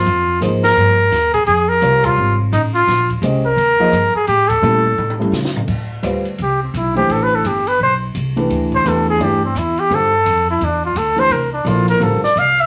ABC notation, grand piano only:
X:1
M:4/4
L:1/8
Q:"Swing" 1/4=171
K:Bbdor
V:1 name="Grand piano"
z2 [F,B,EAc]3 z3 | z2 [C,G,FBd]3 z3 | z2 [A,DGce] z2 [F,B,EAe] z2 | z2 [G,=A,^C=E=A] z2 [G,A,CEA] z2 |
[K:Dm] z2 [G,CF=Bd] z4 [E,A,DGc]- | [E,A,DGc]2 z4 z [E,A,DG=B]- | [E,A,DG=B]2 [E,A,DGB]2 [E,A,DGd] z3 | [D,G,CFA] z6 [E,A,DGc] |
z2 [F,B,EAd]2 [D,G,CFB] z3 |]